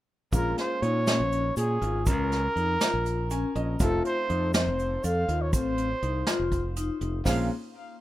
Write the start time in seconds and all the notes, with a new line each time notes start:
0.32 A#1 G#3 A#3 C#4 F4 A#4, kick, closed hi-hat, shaker
0.58 C5, snare, closed hi-hat
0.82 A#2 D#4 C#5, closed hi-hat
1.07 C#4, snare, closed hi-hat, shaker
1.20 A#1
1.32 closed hi-hat, shaker
1.57 A#2 G#4, closed hi-hat, shaker
1.82 G#1 F4, closed hi-hat
2.06 C#2 C#4 A#4, kick, closed hi-hat, shaker
2.32 snare, closed hi-hat
2.56 F2 D#4, closed hi-hat
2.81 F4, snare, closed hi-hat, shaker
2.94 A#1
3.06 closed hi-hat, shaker
3.30 C#4 G#5, closed hi-hat, shaker
3.55 A#1 C#4 D#5, closed hi-hat
3.80 F1 A3 C4 D#4 F4 A4, kick, closed hi-hat, shaker
4.05 C5, closed hi-hat
4.29 F2 D#4, closed hi-hat
4.54 C4 C5, snare, closed hi-hat, shaker
4.67 F1
4.79 closed hi-hat, shaker
5.04 F2 A4 F5, closed hi-hat, shaker
5.28 D#2 F4, closed hi-hat
5.41 C#5
5.53 A1 C4 C5, kick, closed hi-hat, shaker
5.77 closed hi-hat
6.02 C2 D#4, closed hi-hat
6.27 F4, snare, closed hi-hat, shaker
6.39 F1
6.52 kick, closed hi-hat, shaker
6.76 D#4, closed hi-hat, shaker
7.01 F1 D#4, closed hi-hat
7.25 A#1 G#3 A#3 C4 C#4 F4 F5, kick, snare, open hi-hat, shaker